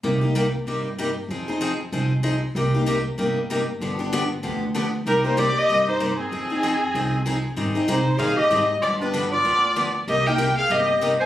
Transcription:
X:1
M:4/4
L:1/8
Q:"Swing" 1/4=191
K:Cm
V:1 name="Violin"
z8 | z8 | z8 | z8 |
B c d e2 c2 A- | A6- A z | z2 c2 f e2 z | d =B2 d4 z |
e g2 f e2 z a |]
V:2 name="Clarinet"
z8 | z8 | z8 | z8 |
E E G G2 E2 C- | C6- C z | z2 E2 A G2 z | F D2 F4 z |
G B2 A G2 z c |]
V:3 name="Steel-string acoustic guitar"
[C,G,B,EG] [B,EG] [C,G,B,EG] z [C,G,B,EG] z [C,G,B,EG] z | [F,CEA] [CEA] [F,CEA] z [F,CEA] z [F,CEA] z | [C,G,B,EG] [B,EG] [C,G,B,EG] z [C,G,B,EG] z [C,G,B,EG] z | [D,F,=B,DG] [B,DG] [D,F,B,DG] z [D,F,B,DG] z [D,F,B,DG] z |
[C,G,B,EG] [B,EG] [C,G,B,EG] z [C,G,B,EG] z [C,G,B,EG] z | [F,CEA] [CEA] [F,CEA] z [F,CEA] z [F,CEA] z | [E,G,CEA] [CEA] [E,G,CEA] z [E,G,CEA] z [E,G,CEA] z | [D,F,=B,DG] [B,DG] [D,F,B,DG] z [D,F,B,DG] z [D,F,B,DG] z |
[C,G,B,EG] [B,EG] [C,G,B,EG] z [C,G,B,EG] z [C,G,B,EG] z |]
V:4 name="Upright bass" clef=bass
C,,4 G,,4 | F,,4 C,,4 | C,,4 G,,,4 | G,,,4 D,,4 |
C,,4 G,,4 | F,,4 C,,4 | A,,2 C,2 B,,2 A,,2 | G,,4 D,,4 |
C,,4 G,,,4 |]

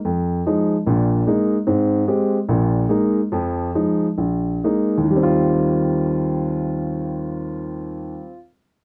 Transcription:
X:1
M:4/4
L:1/8
Q:"Swing" 1/4=135
K:Eb
V:1 name="Grand piano" clef=bass
F,,2 [F,A,E] z [B,,,B,,]2 [A,B,E] z | [A,,C]2 [A,CG] z [B,,,B,,]2 [A,B,E] z | [F,,F,]2 [F,A,E] z B,,,2 [A,B,E] z | [E,,E,G,CF]8- |
[E,,E,G,CF]8 |]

